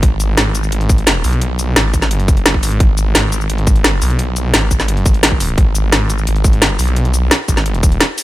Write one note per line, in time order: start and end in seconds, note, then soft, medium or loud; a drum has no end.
0.03 0.36 G#1 loud
0.03 kick loud
0.03 closed hi-hat loud
0.20 closed hi-hat medium
0.20 cabasa medium
0.37 0.71 G#1 loud
0.37 snare loud
0.37 closed hi-hat loud
0.55 closed hi-hat medium
0.55 cabasa medium
0.63 cabasa soft
0.72 1.23 G#1 loud
0.72 closed hi-hat loud
0.81 closed hi-hat soft
0.89 kick loud
0.89 closed hi-hat medium
0.89 cabasa medium
0.98 closed hi-hat soft
1.07 snare loud
1.07 closed hi-hat loud
1.24 1.75 B1 loud
1.24 open hi-hat medium
1.24 cabasa medium
1.33 closed hi-hat soft
1.41 closed hi-hat medium
1.59 closed hi-hat medium
1.59 cabasa medium
1.76 2.27 G#1 loud
1.76 snare loud
1.76 closed hi-hat medium
1.93 kick medium
1.93 closed hi-hat medium
1.93 cabasa medium
2.02 snare soft
2.02 cabasa soft
2.11 closed hi-hat medium
2.20 closed hi-hat soft
2.28 2.61 F#1 loud
2.28 kick loud
2.28 closed hi-hat medium
2.28 cabasa medium
2.37 closed hi-hat soft
2.46 snare loud
2.46 closed hi-hat medium
2.54 kick medium
2.63 2.79 G#1 loud
2.63 open hi-hat medium
2.63 cabasa medium
2.72 closed hi-hat soft
2.80 3.14 G#1 medium
2.80 kick loud
2.80 closed hi-hat medium
2.98 closed hi-hat medium
2.98 cabasa medium
3.15 3.48 G#1 loud
3.15 snare loud
3.15 closed hi-hat medium
3.32 closed hi-hat medium
3.32 cabasa medium
3.41 cabasa soft
3.50 4.00 G#1 loud
3.50 closed hi-hat medium
3.58 closed hi-hat soft
3.67 kick loud
3.67 closed hi-hat medium
3.67 cabasa medium
3.76 closed hi-hat soft
3.84 snare loud
3.84 closed hi-hat medium
4.02 4.52 B1 loud
4.02 open hi-hat medium
4.02 cabasa medium
4.10 closed hi-hat soft
4.19 closed hi-hat medium
4.36 closed hi-hat medium
4.36 cabasa medium
4.54 5.04 G#1 loud
4.54 snare loud
4.54 closed hi-hat medium
4.71 kick medium
4.71 closed hi-hat medium
4.71 cabasa medium
4.80 snare soft
4.80 cabasa soft
4.88 closed hi-hat medium
4.97 closed hi-hat soft
5.06 5.56 G#1 loud
5.06 kick loud
5.06 closed hi-hat medium
5.06 cabasa medium
5.14 closed hi-hat soft
5.23 snare loud
5.23 closed hi-hat medium
5.32 kick medium
5.40 open hi-hat medium
5.40 cabasa medium
5.49 closed hi-hat soft
5.58 5.91 G#1 loud
5.58 kick loud
5.58 closed hi-hat medium
5.75 closed hi-hat medium
5.75 cabasa medium
5.92 6.26 G#1 loud
5.92 snare loud
5.92 closed hi-hat medium
6.10 closed hi-hat medium
6.10 cabasa medium
6.18 cabasa soft
6.27 6.78 G#1 loud
6.27 closed hi-hat medium
6.36 closed hi-hat soft
6.44 kick loud
6.44 closed hi-hat medium
6.44 cabasa medium
6.53 closed hi-hat soft
6.62 snare loud
6.62 closed hi-hat medium
6.79 7.30 B1 loud
6.79 open hi-hat medium
6.79 cabasa medium
6.88 closed hi-hat soft
6.96 closed hi-hat medium
7.05 closed hi-hat soft
7.14 closed hi-hat medium
7.14 cabasa medium
7.31 snare loud
7.31 closed hi-hat loud
7.31 cabasa soft
7.48 7.82 G#1 loud
7.48 kick medium
7.48 closed hi-hat medium
7.48 cabasa medium
7.57 snare soft
7.57 cabasa soft
7.66 closed hi-hat loud
7.74 closed hi-hat soft
7.83 8.00 D#1 loud
7.83 kick loud
7.83 closed hi-hat medium
7.83 cabasa medium
7.92 closed hi-hat soft
8.00 snare loud
8.00 closed hi-hat loud
8.18 open hi-hat medium
8.18 cabasa medium